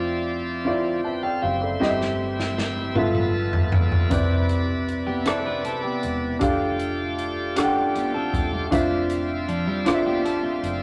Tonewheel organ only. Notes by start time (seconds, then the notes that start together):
Already playing: F3 C4 D5 E5
1.03 B4 G5
1.22 A4 F5
1.42 G4 E5
1.61 E4 C5
1.79 C4 E4 G4 E5
2.95 B3 F4 A4 E5
3.33 A5
3.74 D5
4.12 C3 E4 B4 D5
6.41 G3 F4 G4 D5
6.48 A3
8.73 C4 F4 D5 E5